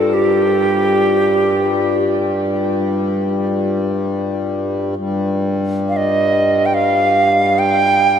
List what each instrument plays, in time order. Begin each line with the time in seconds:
Already playing: harmonium G2, singing bowl F4, native american-style wooden flute A4
0.14 native american-style wooden flute G4
4.96 harmonium G2
5.89 native american-style wooden flute F5
5.97 native american-style wooden flute D#5
6.66 native american-style wooden flute G5
6.74 native american-style wooden flute F5
7.59 native american-style wooden flute G5